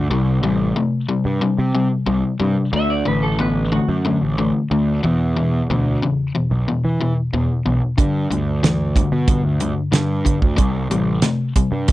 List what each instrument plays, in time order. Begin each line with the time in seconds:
0.10 picked electric bass C2, overdriven electric guitar C3 G3
0.42 picked electric bass A1, overdriven electric guitar C3 G3
0.76 overdriven electric guitar C3 A3
1.09 overdriven electric guitar C3 G3
1.25 picked electric bass G2
1.41 overdriven electric guitar C3 G3
1.58 picked electric bass C3
1.75 overdriven electric guitar C3 G3
2.06 picked electric bass C2, overdriven electric guitar C3 G3
2.40 picked electric bass G2, overdriven electric guitar C3 G3
2.73 picked electric bass D2, overdriven electric guitar D3 A3, electric slide guitar E5
2.90 electric slide guitar D5
3.05 picked electric bass A1, overdriven electric guitar D3 A3, electric slide guitar B4
3.23 electric slide guitar A4
3.39 overdriven electric guitar D3 B3, electric slide guitar B4
3.72 overdriven electric guitar D3 A3, electric slide guitar F#4
3.88 picked electric bass F#2
4.05 overdriven electric guitar D3 A3
4.22 picked electric bass A1
4.38 overdriven electric guitar D3 A3
4.71 picked electric bass D2, overdriven electric guitar D3 A3
5.03 overdriven electric guitar E2 B2, picked electric bass E2
5.37 overdriven electric guitar E2 B2
5.70 picked electric bass D2, overdriven electric guitar E2 B2
6.02 overdriven electric guitar E2 C#3
6.35 overdriven electric guitar E2 B2
6.51 picked electric bass B1
6.68 overdriven electric guitar E2 B2
6.85 picked electric bass E3
7.01 overdriven electric guitar E2 B2
7.33 picked electric bass E2, overdriven electric guitar E2 B2
7.66 picked electric bass B1, overdriven electric guitar E2 B2
7.98 overdriven electric guitar G2 D3, picked electric bass G2, kick, closed hi-hat
8.30 picked electric bass D2, overdriven electric guitar G2 D3, closed hi-hat
8.63 overdriven electric guitar G2 E3, snare, closed hi-hat
8.96 overdriven electric guitar G2 D3, kick, closed hi-hat
9.12 picked electric bass B2
9.28 overdriven electric guitar G2 D3, kick, closed hi-hat
9.44 picked electric bass D2
9.60 overdriven electric guitar G2 D3, closed hi-hat
9.92 overdriven electric guitar G2 D3, picked electric bass G2, snare, closed hi-hat
10.25 overdriven electric guitar G2 D3, kick, closed hi-hat
10.42 picked electric bass D2, kick
10.57 picked electric bass C2, overdriven electric guitar C3 G3, kick, closed hi-hat
10.90 picked electric bass A1, overdriven electric guitar C3 G3, closed hi-hat
11.22 overdriven electric guitar C3 A3, snare, closed hi-hat
11.56 overdriven electric guitar C3 G3, kick, closed hi-hat
11.72 picked electric bass G2
11.88 overdriven electric guitar C3 G3, kick, closed hi-hat